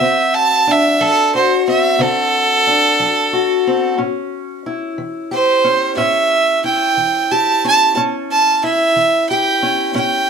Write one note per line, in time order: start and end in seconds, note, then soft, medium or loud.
0.00 0.60 D3 medium
0.00 1.66 C4 medium
0.00 1.33 F#4 medium
0.00 0.36 E5 medium
0.34 0.73 A5 medium
0.67 2.66 D4 medium
0.72 1.03 E5 medium
1.01 1.60 F#3 medium
1.01 1.33 A4 loud
1.35 3.32 F#4 medium
1.35 1.66 C5 medium
1.68 1.98 C4 medium
1.68 2.03 E5 medium
1.99 2.59 D3 medium
1.99 3.65 C4 medium
1.99 3.95 A4 loud
2.67 3.95 D4 medium
3.00 3.59 F#3 medium
3.33 3.99 F#4 medium
3.67 3.95 C4 medium
3.98 4.58 A2 medium
3.98 5.64 C#4 medium
4.66 6.64 E4 medium
4.98 5.57 E3 medium
5.31 7.30 G4 medium
5.31 5.96 C5 medium
5.64 5.97 C#4 medium
5.97 6.57 A2 medium
5.97 7.63 C#4 medium
5.97 6.61 E5 medium
6.64 8.63 E4 medium
6.64 7.33 G5 medium
6.97 7.56 E3 soft
7.31 7.93 G4 medium
7.31 7.63 A5 medium
7.65 7.93 C#4 medium
7.65 7.97 A5 loud
7.95 8.55 A2 medium
7.95 9.61 C#4 medium
8.31 8.62 A5 medium
8.63 10.30 E4 medium
8.63 9.28 E5 loud
8.96 9.55 E3 medium
9.29 10.30 G4 medium
9.29 9.93 G5 medium
9.63 9.94 C#4 medium
9.95 10.30 A2 medium
9.95 10.30 C#4 medium
9.95 10.30 G5 medium